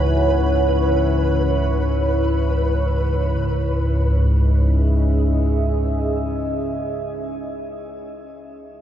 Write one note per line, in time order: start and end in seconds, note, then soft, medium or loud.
0.00 3.36 C#2 medium
0.00 3.36 G#2 medium
0.00 3.38 C#3 medium
0.00 3.39 E4 medium
0.00 3.41 B4 medium
0.00 3.38 C#5 medium
0.00 3.38 F#5 medium
0.00 3.39 G#5 medium
3.37 8.02 C#2 medium
3.37 8.01 G#2 medium
3.37 8.02 C#4 medium
3.53 8.18 G#4 medium
3.68 8.21 D#5 medium
3.84 8.21 E5 medium